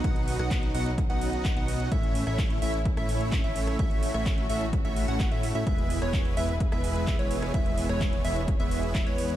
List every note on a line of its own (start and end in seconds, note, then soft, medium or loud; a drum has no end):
0.00 1.88 F#3 medium
0.00 1.88 D#4 medium
0.04 0.37 B3 loud
0.04 5.63 C#4 medium
0.04 0.37 D#4 medium
0.04 0.37 F#4 medium
0.04 0.37 D#5 loud
0.04 0.37 F#5 loud
0.04 kick loud
0.04 closed hi-hat medium
0.16 closed hi-hat soft
0.28 open hi-hat loud
0.39 0.72 B1 loud
0.39 0.72 B3 medium
0.39 0.72 D#4 medium
0.39 0.72 F#4 medium
0.39 0.72 D#5 medium
0.39 0.72 F#5 medium
0.39 cross-stick medium
0.39 closed hi-hat soft
0.51 kick loud
0.51 clap loud
0.51 closed hi-hat loud
0.63 closed hi-hat soft
0.74 1.07 B1 loud
0.74 0.91 B3 loud
0.74 0.91 D#4 medium
0.74 0.91 F#4 loud
0.74 0.91 D#5 medium
0.74 0.91 F#5 loud
0.74 open hi-hat loud
0.98 kick loud
0.98 closed hi-hat loud
1.10 1.54 B1 loud
1.10 1.54 B3 loud
1.10 1.54 D#4 medium
1.10 1.54 F#4 medium
1.10 1.54 D#5 medium
1.10 1.54 F#5 loud
1.10 closed hi-hat soft
1.21 open hi-hat loud
1.33 closed hi-hat soft
1.45 kick loud
1.45 clap loud
1.45 closed hi-hat medium
1.57 1.89 B1 medium
1.57 1.89 B3 medium
1.57 1.89 D#4 medium
1.57 1.89 F#4 medium
1.57 1.89 D#5 medium
1.57 1.89 F#5 medium
1.57 closed hi-hat soft
1.68 open hi-hat loud
1.80 closed hi-hat soft
1.92 2.25 A1 loud
1.92 2.24 A3 loud
1.92 5.63 A3 medium
1.92 2.24 C#4 medium
1.92 2.24 E4 medium
1.92 3.77 E4 medium
1.92 2.24 C#5 medium
1.92 2.24 E5 loud
1.92 kick loud
1.92 closed hi-hat medium
2.03 closed hi-hat soft
2.15 open hi-hat loud
2.27 2.60 A1 loud
2.27 2.59 A3 medium
2.27 2.59 C#4 medium
2.27 2.59 E4 medium
2.27 2.59 C#5 medium
2.27 2.59 E5 medium
2.27 cross-stick medium
2.27 closed hi-hat soft
2.39 kick loud
2.39 clap loud
2.39 closed hi-hat medium
2.50 closed hi-hat soft
2.62 2.95 A1 loud
2.62 2.78 A3 loud
2.62 2.78 C#4 medium
2.62 2.78 E4 medium
2.62 2.78 C#5 medium
2.62 2.78 E5 loud
2.62 open hi-hat loud
2.74 closed hi-hat soft
2.85 kick loud
2.85 closed hi-hat medium
2.97 3.42 A1 loud
2.97 3.41 A3 medium
2.97 3.41 C#4 medium
2.97 3.41 E4 medium
2.97 3.41 C#5 medium
2.97 3.41 E5 loud
2.97 cross-stick medium
2.97 closed hi-hat soft
3.09 open hi-hat loud
3.21 closed hi-hat soft
3.32 kick loud
3.32 clap loud
3.32 closed hi-hat medium
3.44 3.77 A1 medium
3.44 3.76 A3 medium
3.44 3.76 C#4 medium
3.44 3.76 E4 medium
3.44 3.76 C#5 medium
3.44 3.76 E5 medium
3.44 closed hi-hat soft
3.56 open hi-hat loud
3.67 cross-stick medium
3.67 closed hi-hat soft
3.79 4.12 A3 loud
3.79 4.12 C#4 medium
3.79 4.12 E4 medium
3.79 5.65 F#4 medium
3.79 4.12 C#5 medium
3.79 4.12 E5 loud
3.79 kick loud
3.79 closed hi-hat medium
3.91 closed hi-hat soft
4.03 open hi-hat loud
4.14 4.47 A1 loud
4.14 4.47 A3 medium
4.14 4.47 C#4 medium
4.14 4.47 E4 medium
4.14 4.47 C#5 medium
4.14 4.47 E5 medium
4.14 cross-stick medium
4.14 closed hi-hat soft
4.26 kick loud
4.26 clap loud
4.26 closed hi-hat medium
4.38 closed hi-hat soft
4.50 4.82 A1 medium
4.50 4.66 A3 loud
4.50 4.66 C#4 medium
4.50 4.66 E4 medium
4.50 4.66 C#5 medium
4.50 4.66 E5 loud
4.50 open hi-hat loud
4.61 closed hi-hat soft
4.73 kick loud
4.73 closed hi-hat medium
4.85 5.06 A1 loud
4.85 5.06 A3 medium
4.85 5.06 C#4 medium
4.85 5.06 E4 medium
4.85 5.06 C#5 medium
4.85 5.06 E5 loud
4.85 closed hi-hat soft
4.96 open hi-hat loud
5.08 5.29 A1 loud
5.08 5.29 A3 loud
5.08 5.29 C#4 medium
5.08 5.29 E4 medium
5.08 5.29 C#5 medium
5.08 5.29 F#5 loud
5.08 closed hi-hat soft
5.20 kick loud
5.20 clap loud
5.20 closed hi-hat medium
5.32 5.53 A2 medium
5.32 5.52 A3 medium
5.32 5.52 C#4 medium
5.32 5.52 E4 medium
5.32 5.52 C#5 medium
5.32 5.52 E5 medium
5.32 closed hi-hat soft
5.43 open hi-hat loud
5.55 5.64 A2 loud
5.55 5.64 A3 medium
5.55 5.64 C#4 medium
5.55 5.64 E4 medium
5.55 5.64 C#5 medium
5.55 5.64 E5 medium
5.55 closed hi-hat soft
5.67 6.00 E1 loud
5.67 9.36 E3 medium
5.67 5.99 G#3 loud
5.67 5.99 B3 medium
5.67 5.99 E4 medium
5.67 9.36 E4 medium
5.67 9.36 G#4 medium
5.67 5.99 B4 medium
5.67 7.52 B4 medium
5.67 5.99 E5 loud
5.67 kick loud
5.67 closed hi-hat medium
5.78 closed hi-hat soft
5.90 open hi-hat loud
6.02 6.35 E1 loud
6.02 6.34 G#3 medium
6.02 6.34 B3 medium
6.02 6.34 E4 medium
6.02 6.34 B4 medium
6.02 6.34 C#5 loud
6.02 6.34 C#5 medium
6.02 cross-stick medium
6.02 closed hi-hat soft
6.14 kick loud
6.14 clap loud
6.14 closed hi-hat medium
6.25 closed hi-hat soft
6.37 6.70 E1 loud
6.37 6.53 G#3 loud
6.37 6.53 B3 medium
6.37 6.53 E4 medium
6.37 6.53 B4 medium
6.37 6.53 E5 loud
6.37 6.54 E5 loud
6.37 open hi-hat loud
6.49 closed hi-hat soft
6.60 kick loud
6.60 closed hi-hat medium
6.72 7.17 E1 loud
6.72 7.16 G#3 medium
6.72 7.16 B3 medium
6.72 7.16 E4 medium
6.72 7.16 B4 medium
6.72 7.16 E5 loud
6.72 cross-stick medium
6.72 closed hi-hat soft
6.84 open hi-hat loud
6.96 closed hi-hat soft
7.07 kick loud
7.07 clap loud
7.07 closed hi-hat medium
7.19 7.52 E1 medium
7.19 7.51 G#3 medium
7.19 7.51 B3 medium
7.19 7.51 E4 medium
7.19 7.51 B4 medium
7.19 7.51 C#5 medium
7.19 closed hi-hat soft
7.31 open hi-hat loud
7.42 cross-stick medium
7.42 closed hi-hat soft
7.54 7.87 E1 loud
7.54 7.87 G#3 loud
7.54 7.87 B3 medium
7.54 7.87 E4 medium
7.54 7.87 B4 loud
7.54 9.36 C#5 medium
7.54 7.87 E5 loud
7.54 kick loud
7.54 closed hi-hat loud
7.66 closed hi-hat soft
7.78 open hi-hat loud
7.89 8.22 E1 loud
7.89 8.22 G#3 medium
7.89 8.22 B3 medium
7.89 8.22 E4 medium
7.89 8.22 B4 medium
7.89 8.22 C#5 medium
7.89 cross-stick medium
7.89 closed hi-hat soft
8.01 kick loud
8.01 clap loud
8.01 closed hi-hat medium
8.13 closed hi-hat soft
8.24 8.57 E1 loud
8.24 8.41 G#3 loud
8.24 8.41 B3 medium
8.24 8.41 E4 medium
8.24 8.41 B4 medium
8.24 8.41 E5 loud
8.24 open hi-hat loud
8.48 kick loud
8.48 closed hi-hat medium
8.60 9.04 E1 loud
8.60 9.04 G#3 medium
8.60 9.04 B3 medium
8.60 9.04 E4 medium
8.60 9.04 B4 medium
8.60 9.04 E5 loud
8.60 closed hi-hat soft
8.71 open hi-hat loud
8.83 closed hi-hat soft
8.95 kick loud
8.95 clap loud
8.95 closed hi-hat medium
9.07 9.36 E2 medium
9.07 9.36 G#3 medium
9.07 9.36 B3 medium
9.07 9.36 E4 medium
9.07 9.36 B4 medium
9.07 9.36 C#5 medium
9.07 closed hi-hat soft
9.18 open hi-hat loud
9.30 closed hi-hat soft